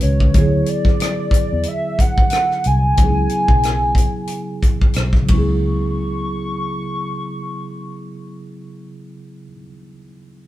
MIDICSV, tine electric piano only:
0, 0, Header, 1, 2, 480
1, 0, Start_track
1, 0, Key_signature, 4, "minor"
1, 0, Tempo, 659341
1, 250, Time_signature, 4, 2, 24, 8
1, 7625, End_track
2, 0, Start_track
2, 0, Title_t, "Tine electric piano"
2, 0, Program_c, 0, 4
2, 0, Control_c, 0, 64, 127
2, 0, Note_on_c, 0, 51, 66
2, 0, Note_on_c, 0, 56, 58
2, 0, Note_on_c, 0, 61, 57
2, 0, Note_on_c, 0, 66, 58
2, 0, Note_on_c, 0, 71, 68
2, 221, Note_off_c, 0, 51, 0
2, 228, Note_off_c, 0, 56, 0
2, 231, Note_on_c, 0, 50, 61
2, 234, Note_off_c, 0, 61, 0
2, 243, Note_off_c, 0, 66, 0
2, 248, Note_on_c, 0, 54, 57
2, 250, Note_off_c, 0, 71, 0
2, 260, Control_c, 0, 64, 0
2, 263, Note_on_c, 0, 59, 54
2, 278, Note_on_c, 0, 64, 58
2, 292, Note_on_c, 0, 68, 74
2, 377, Control_c, 0, 64, 127
2, 2132, Note_off_c, 0, 50, 0
2, 2140, Note_off_c, 0, 54, 0
2, 2148, Note_off_c, 0, 59, 0
2, 2149, Note_on_c, 0, 49, 57
2, 2155, Note_off_c, 0, 64, 0
2, 2162, Note_off_c, 0, 68, 0
2, 2164, Note_on_c, 0, 54, 54
2, 2179, Control_c, 0, 64, 0
2, 2179, Note_on_c, 0, 59, 55
2, 2195, Note_on_c, 0, 63, 44
2, 2211, Note_on_c, 0, 68, 70
2, 2233, Note_off_c, 0, 63, 0
2, 2241, Note_on_c, 0, 64, 53
2, 2323, Control_c, 0, 64, 127
2, 3785, Note_off_c, 0, 49, 0
2, 3794, Note_on_c, 0, 49, 59
2, 3816, Note_off_c, 0, 54, 0
2, 3825, Note_on_c, 0, 54, 53
2, 3826, Note_off_c, 0, 59, 0
2, 3842, Note_off_c, 0, 68, 0
2, 3855, Note_on_c, 0, 59, 53
2, 3857, Note_off_c, 0, 64, 0
2, 3860, Control_c, 0, 64, 0
2, 3885, Note_on_c, 0, 64, 59
2, 3915, Note_on_c, 0, 68, 70
2, 3950, Control_c, 0, 64, 127
2, 4100, Control_c, 0, 64, 0
2, 4218, Control_c, 0, 64, 127
2, 6886, Note_off_c, 0, 49, 0
2, 6917, Note_off_c, 0, 54, 0
2, 6947, Note_off_c, 0, 59, 0
2, 6977, Note_off_c, 0, 64, 0
2, 7007, Note_off_c, 0, 68, 0
2, 7625, End_track
0, 0, End_of_file